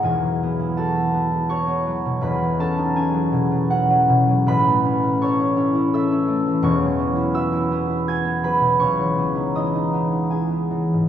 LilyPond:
<<
  \new Staff \with { instrumentName = "Harp" } { \time 3/4 \key b \mixolydian \tempo 4 = 82 <fis' gis' b' fis'' gis'' b''>4 <a' a''>4 <cis'' cis'''>4 | <b' b''>8 <a' a''>8 <gis' gis''>4 <fis' fis''>4 | \key e \major <b' b''>4 <cis'' cis'''>4 <e'' e'''>4 | <cis'' cis'''>4 <e'' e'''>4 <gis'' gis'''>8 <b' b''>8 |
<cis'' cis'''>4 <dis'' dis'''>4 <gis' gis''>4 | }
  \new Staff \with { instrumentName = "Harp" } { \time 3/4 \key b \mixolydian <e,, e, gis b>16 fis16 b16 e'16 fis'16 e'16 b16 e'16 fis'16 b16 fis16 b,16 | <e,, e,>16 fis16 cis'16 dis'16 cis'16 fis16 b,16 fis16 cis'16 fis16 b,16 fis16 | \key e \major <a,, a,>16 a16 cis'16 e'16 a'16 e'16 cis'16 e'16 a'16 cis'16 a16 e16 | <e,, e,>16 fis16 b16 e'16 fis'16 e'16 b16 e'16 fis'16 b16 fis16 b,16 |
cis,16 e16 b16 dis'16 e'16 dis'16 b16 dis'16 e'16 b16 e16 gis,16 | }
>>